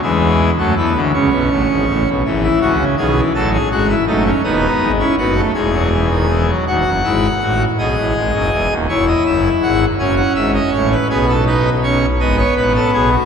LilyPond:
<<
  \new Staff \with { instrumentName = "Pipe organ" } { \time 6/8 \key e \mixolydian \tempo 4. = 54 << { gis8. a16 b8 cis'4. | e8. cis16 dis16 e16 fis8 gis8 a8 | b8. cis'16 b16 a16 gis16 fis16 e16 dis16 e16 fis16 | fis''4. dis''4. |
cis''16 dis''16 e''8 fis''8 gis''16 fis''16 e''16 dis''16 cis''16 b'16 | gis'16 a'16 b'8 cis''8 dis''16 cis''16 b'16 a'16 gis'16 fis'16 | } \\ { r2. | r16 e'16 fis'8 gis'8 a'16 gis'16 fis'16 e'16 dis'16 cis'16 | dis'8. e'16 fis'8 gis'4. | fis'8 e'8 fis'8 gis'4. |
e'4. cis'4. | b8 dis'8 cis'8 b4. | } >> }
  \new Staff \with { instrumentName = "Pipe organ" } { \clef bass \time 6/8 \key e \mixolydian <e, e>8. <fis, fis>16 <e, e>16 <d, d>16 <cis, cis>16 <b,, b,>16 <a,, a,>16 <gis,, gis,>16 <a,, a,>16 <b,, b,>16 | <gis,, gis,>8 <cis, cis>8 <b,, b,>8 <a,, a,>8 <gis,, gis,>8 <fis,, fis,>8 | <dis,, dis,>8 <gis,, gis,>8 <fis,, fis,>8 <e,, e,>4. | <dis,, dis,>16 <fis,, fis,>16 <gis,, gis,>8 <a,, a,>8 <b,, b,>16 <a,, a,>16 <gis,, gis,>16 <fis,, fis,>16 <e,, e,>16 <dis,, dis,>16 |
<e,, e,>8 <fis,, fis,>8 <gis,, gis,>8 <fis,, fis,>8 <gis,, gis,>8 <a,, a,>8 | <b,, b,>4. <gis,, gis,>8 <a,, a,>8 <b,, b,>8 | }
>>